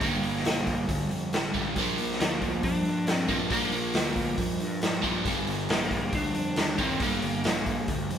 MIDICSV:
0, 0, Header, 1, 5, 480
1, 0, Start_track
1, 0, Key_signature, -2, "minor"
1, 0, Tempo, 437318
1, 19, Time_signature, 4, 2, 24, 8
1, 8981, End_track
2, 0, Start_track
2, 0, Title_t, "Lead electric guitar"
2, 0, Program_c, 0, 29
2, 0, Note_on_c, 0, 58, 74
2, 922, Note_off_c, 0, 58, 0
2, 2417, Note_on_c, 0, 58, 85
2, 2863, Note_off_c, 0, 58, 0
2, 2899, Note_on_c, 0, 62, 93
2, 3459, Note_off_c, 0, 62, 0
2, 3459, Note_on_c, 0, 60, 93
2, 3623, Note_off_c, 0, 60, 0
2, 3623, Note_on_c, 0, 60, 85
2, 3687, Note_off_c, 0, 60, 0
2, 3861, Note_on_c, 0, 58, 75
2, 4775, Note_off_c, 0, 58, 0
2, 6262, Note_on_c, 0, 58, 79
2, 6747, Note_on_c, 0, 62, 96
2, 6754, Note_off_c, 0, 58, 0
2, 7470, Note_on_c, 0, 60, 83
2, 7484, Note_off_c, 0, 62, 0
2, 7704, Note_off_c, 0, 60, 0
2, 7709, Note_on_c, 0, 58, 76
2, 8620, Note_off_c, 0, 58, 0
2, 8981, End_track
3, 0, Start_track
3, 0, Title_t, "Overdriven electric guitar"
3, 0, Program_c, 1, 29
3, 3, Note_on_c, 1, 43, 85
3, 23, Note_on_c, 1, 50, 83
3, 41, Note_on_c, 1, 55, 93
3, 1674, Note_off_c, 1, 55, 0
3, 1675, Note_off_c, 1, 43, 0
3, 1685, Note_off_c, 1, 50, 0
3, 1687, Note_on_c, 1, 55, 77
3, 1708, Note_on_c, 1, 50, 70
3, 1721, Note_on_c, 1, 43, 71
3, 1918, Note_off_c, 1, 55, 0
3, 1924, Note_off_c, 1, 50, 0
3, 1928, Note_on_c, 1, 46, 79
3, 1935, Note_off_c, 1, 43, 0
3, 1949, Note_on_c, 1, 53, 88
3, 1965, Note_on_c, 1, 58, 81
3, 3597, Note_off_c, 1, 46, 0
3, 3598, Note_off_c, 1, 58, 0
3, 3603, Note_on_c, 1, 58, 72
3, 3607, Note_off_c, 1, 53, 0
3, 3619, Note_on_c, 1, 53, 73
3, 3636, Note_on_c, 1, 46, 56
3, 3827, Note_off_c, 1, 46, 0
3, 3840, Note_on_c, 1, 46, 78
3, 3843, Note_off_c, 1, 53, 0
3, 3860, Note_on_c, 1, 53, 87
3, 3872, Note_off_c, 1, 58, 0
3, 3876, Note_on_c, 1, 58, 93
3, 5508, Note_off_c, 1, 58, 0
3, 5513, Note_on_c, 1, 58, 69
3, 5514, Note_off_c, 1, 46, 0
3, 5522, Note_off_c, 1, 53, 0
3, 5535, Note_on_c, 1, 53, 69
3, 5551, Note_on_c, 1, 46, 63
3, 5754, Note_on_c, 1, 43, 77
3, 5761, Note_off_c, 1, 53, 0
3, 5769, Note_off_c, 1, 46, 0
3, 5775, Note_on_c, 1, 50, 82
3, 5790, Note_on_c, 1, 55, 80
3, 7429, Note_off_c, 1, 55, 0
3, 7432, Note_off_c, 1, 43, 0
3, 7442, Note_on_c, 1, 55, 79
3, 7443, Note_off_c, 1, 50, 0
3, 7461, Note_on_c, 1, 50, 71
3, 7479, Note_on_c, 1, 43, 59
3, 7668, Note_off_c, 1, 43, 0
3, 7676, Note_off_c, 1, 55, 0
3, 7681, Note_on_c, 1, 43, 84
3, 7685, Note_off_c, 1, 50, 0
3, 7704, Note_on_c, 1, 50, 82
3, 7720, Note_on_c, 1, 55, 90
3, 8981, Note_off_c, 1, 43, 0
3, 8981, Note_off_c, 1, 50, 0
3, 8981, Note_off_c, 1, 55, 0
3, 8981, Note_off_c, 1, 58, 0
3, 8981, End_track
4, 0, Start_track
4, 0, Title_t, "Picked electric bass"
4, 0, Program_c, 2, 34
4, 13, Note_on_c, 2, 31, 85
4, 238, Note_off_c, 2, 31, 0
4, 252, Note_on_c, 2, 31, 85
4, 477, Note_off_c, 2, 31, 0
4, 487, Note_on_c, 2, 34, 86
4, 715, Note_off_c, 2, 34, 0
4, 739, Note_on_c, 2, 34, 77
4, 961, Note_off_c, 2, 34, 0
4, 977, Note_on_c, 2, 38, 89
4, 1200, Note_off_c, 2, 38, 0
4, 1218, Note_on_c, 2, 41, 77
4, 1440, Note_off_c, 2, 41, 0
4, 1460, Note_on_c, 2, 33, 84
4, 1903, Note_off_c, 2, 33, 0
4, 1936, Note_on_c, 2, 34, 92
4, 2159, Note_off_c, 2, 34, 0
4, 2177, Note_on_c, 2, 34, 83
4, 2399, Note_off_c, 2, 34, 0
4, 2422, Note_on_c, 2, 38, 88
4, 2642, Note_off_c, 2, 38, 0
4, 2656, Note_on_c, 2, 38, 77
4, 2878, Note_off_c, 2, 38, 0
4, 2892, Note_on_c, 2, 41, 85
4, 3116, Note_off_c, 2, 41, 0
4, 3137, Note_on_c, 2, 43, 82
4, 3359, Note_off_c, 2, 43, 0
4, 3370, Note_on_c, 2, 43, 78
4, 3817, Note_off_c, 2, 43, 0
4, 3849, Note_on_c, 2, 34, 86
4, 4075, Note_off_c, 2, 34, 0
4, 4084, Note_on_c, 2, 34, 84
4, 4312, Note_off_c, 2, 34, 0
4, 4326, Note_on_c, 2, 38, 85
4, 4553, Note_off_c, 2, 38, 0
4, 4568, Note_on_c, 2, 38, 79
4, 4794, Note_off_c, 2, 38, 0
4, 4807, Note_on_c, 2, 41, 92
4, 5034, Note_off_c, 2, 41, 0
4, 5053, Note_on_c, 2, 43, 77
4, 5277, Note_off_c, 2, 43, 0
4, 5295, Note_on_c, 2, 43, 78
4, 5741, Note_off_c, 2, 43, 0
4, 5765, Note_on_c, 2, 31, 86
4, 5993, Note_off_c, 2, 31, 0
4, 6009, Note_on_c, 2, 31, 78
4, 6235, Note_off_c, 2, 31, 0
4, 6249, Note_on_c, 2, 34, 82
4, 6475, Note_off_c, 2, 34, 0
4, 6484, Note_on_c, 2, 34, 79
4, 6712, Note_off_c, 2, 34, 0
4, 6730, Note_on_c, 2, 38, 90
4, 6956, Note_off_c, 2, 38, 0
4, 6971, Note_on_c, 2, 41, 79
4, 7197, Note_off_c, 2, 41, 0
4, 7208, Note_on_c, 2, 39, 83
4, 7658, Note_off_c, 2, 39, 0
4, 7689, Note_on_c, 2, 31, 86
4, 7916, Note_off_c, 2, 31, 0
4, 7930, Note_on_c, 2, 31, 82
4, 8156, Note_off_c, 2, 31, 0
4, 8179, Note_on_c, 2, 34, 86
4, 8401, Note_off_c, 2, 34, 0
4, 8413, Note_on_c, 2, 34, 81
4, 8638, Note_off_c, 2, 34, 0
4, 8652, Note_on_c, 2, 38, 90
4, 8877, Note_off_c, 2, 38, 0
4, 8905, Note_on_c, 2, 41, 88
4, 8981, Note_off_c, 2, 41, 0
4, 8981, End_track
5, 0, Start_track
5, 0, Title_t, "Drums"
5, 11, Note_on_c, 9, 46, 70
5, 13, Note_on_c, 9, 36, 108
5, 121, Note_off_c, 9, 46, 0
5, 122, Note_off_c, 9, 36, 0
5, 255, Note_on_c, 9, 46, 51
5, 365, Note_off_c, 9, 46, 0
5, 391, Note_on_c, 9, 38, 31
5, 494, Note_on_c, 9, 46, 69
5, 501, Note_off_c, 9, 38, 0
5, 509, Note_on_c, 9, 38, 99
5, 604, Note_off_c, 9, 46, 0
5, 618, Note_off_c, 9, 38, 0
5, 734, Note_on_c, 9, 36, 80
5, 735, Note_on_c, 9, 46, 54
5, 844, Note_off_c, 9, 36, 0
5, 844, Note_off_c, 9, 46, 0
5, 974, Note_on_c, 9, 36, 102
5, 975, Note_on_c, 9, 46, 68
5, 1084, Note_off_c, 9, 36, 0
5, 1085, Note_off_c, 9, 46, 0
5, 1218, Note_on_c, 9, 46, 45
5, 1328, Note_off_c, 9, 46, 0
5, 1457, Note_on_c, 9, 46, 65
5, 1471, Note_on_c, 9, 38, 101
5, 1567, Note_off_c, 9, 46, 0
5, 1581, Note_off_c, 9, 38, 0
5, 1692, Note_on_c, 9, 46, 49
5, 1694, Note_on_c, 9, 36, 73
5, 1802, Note_off_c, 9, 46, 0
5, 1804, Note_off_c, 9, 36, 0
5, 1931, Note_on_c, 9, 46, 70
5, 1933, Note_on_c, 9, 36, 97
5, 2041, Note_off_c, 9, 46, 0
5, 2042, Note_off_c, 9, 36, 0
5, 2173, Note_on_c, 9, 46, 52
5, 2283, Note_off_c, 9, 46, 0
5, 2311, Note_on_c, 9, 38, 30
5, 2418, Note_on_c, 9, 46, 69
5, 2421, Note_off_c, 9, 38, 0
5, 2433, Note_on_c, 9, 38, 107
5, 2528, Note_off_c, 9, 46, 0
5, 2542, Note_off_c, 9, 38, 0
5, 2651, Note_on_c, 9, 46, 56
5, 2652, Note_on_c, 9, 36, 81
5, 2761, Note_off_c, 9, 36, 0
5, 2761, Note_off_c, 9, 46, 0
5, 2889, Note_on_c, 9, 46, 71
5, 2890, Note_on_c, 9, 36, 100
5, 2999, Note_off_c, 9, 46, 0
5, 3000, Note_off_c, 9, 36, 0
5, 3128, Note_on_c, 9, 46, 48
5, 3238, Note_off_c, 9, 46, 0
5, 3368, Note_on_c, 9, 46, 67
5, 3382, Note_on_c, 9, 38, 98
5, 3478, Note_off_c, 9, 46, 0
5, 3492, Note_off_c, 9, 38, 0
5, 3607, Note_on_c, 9, 46, 57
5, 3609, Note_on_c, 9, 36, 75
5, 3717, Note_off_c, 9, 46, 0
5, 3718, Note_off_c, 9, 36, 0
5, 3845, Note_on_c, 9, 46, 71
5, 3848, Note_on_c, 9, 36, 108
5, 3955, Note_off_c, 9, 46, 0
5, 3958, Note_off_c, 9, 36, 0
5, 4083, Note_on_c, 9, 46, 53
5, 4192, Note_off_c, 9, 46, 0
5, 4321, Note_on_c, 9, 46, 72
5, 4335, Note_on_c, 9, 38, 102
5, 4430, Note_off_c, 9, 46, 0
5, 4445, Note_off_c, 9, 38, 0
5, 4564, Note_on_c, 9, 46, 56
5, 4566, Note_on_c, 9, 36, 87
5, 4674, Note_off_c, 9, 46, 0
5, 4676, Note_off_c, 9, 36, 0
5, 4805, Note_on_c, 9, 46, 72
5, 4806, Note_on_c, 9, 36, 104
5, 4915, Note_off_c, 9, 46, 0
5, 4916, Note_off_c, 9, 36, 0
5, 5051, Note_on_c, 9, 46, 50
5, 5160, Note_off_c, 9, 46, 0
5, 5286, Note_on_c, 9, 46, 65
5, 5300, Note_on_c, 9, 38, 103
5, 5395, Note_off_c, 9, 46, 0
5, 5410, Note_off_c, 9, 38, 0
5, 5527, Note_on_c, 9, 36, 74
5, 5528, Note_on_c, 9, 46, 51
5, 5636, Note_off_c, 9, 36, 0
5, 5638, Note_off_c, 9, 46, 0
5, 5767, Note_on_c, 9, 36, 107
5, 5767, Note_on_c, 9, 46, 66
5, 5877, Note_off_c, 9, 36, 0
5, 5877, Note_off_c, 9, 46, 0
5, 6006, Note_on_c, 9, 46, 50
5, 6116, Note_off_c, 9, 46, 0
5, 6245, Note_on_c, 9, 46, 71
5, 6259, Note_on_c, 9, 38, 101
5, 6355, Note_off_c, 9, 46, 0
5, 6369, Note_off_c, 9, 38, 0
5, 6485, Note_on_c, 9, 46, 51
5, 6486, Note_on_c, 9, 36, 80
5, 6595, Note_off_c, 9, 46, 0
5, 6596, Note_off_c, 9, 36, 0
5, 6725, Note_on_c, 9, 36, 105
5, 6725, Note_on_c, 9, 46, 73
5, 6835, Note_off_c, 9, 36, 0
5, 6835, Note_off_c, 9, 46, 0
5, 6964, Note_on_c, 9, 46, 51
5, 7074, Note_off_c, 9, 46, 0
5, 7202, Note_on_c, 9, 46, 68
5, 7216, Note_on_c, 9, 38, 101
5, 7312, Note_off_c, 9, 46, 0
5, 7326, Note_off_c, 9, 38, 0
5, 7444, Note_on_c, 9, 46, 54
5, 7447, Note_on_c, 9, 36, 77
5, 7554, Note_off_c, 9, 46, 0
5, 7556, Note_off_c, 9, 36, 0
5, 7683, Note_on_c, 9, 46, 78
5, 7687, Note_on_c, 9, 36, 103
5, 7793, Note_off_c, 9, 46, 0
5, 7797, Note_off_c, 9, 36, 0
5, 7926, Note_on_c, 9, 46, 53
5, 8036, Note_off_c, 9, 46, 0
5, 8166, Note_on_c, 9, 46, 74
5, 8180, Note_on_c, 9, 38, 98
5, 8276, Note_off_c, 9, 46, 0
5, 8290, Note_off_c, 9, 38, 0
5, 8410, Note_on_c, 9, 46, 55
5, 8411, Note_on_c, 9, 36, 88
5, 8520, Note_off_c, 9, 36, 0
5, 8520, Note_off_c, 9, 46, 0
5, 8649, Note_on_c, 9, 46, 69
5, 8651, Note_on_c, 9, 36, 105
5, 8758, Note_off_c, 9, 46, 0
5, 8761, Note_off_c, 9, 36, 0
5, 8895, Note_on_c, 9, 46, 51
5, 8981, Note_off_c, 9, 46, 0
5, 8981, End_track
0, 0, End_of_file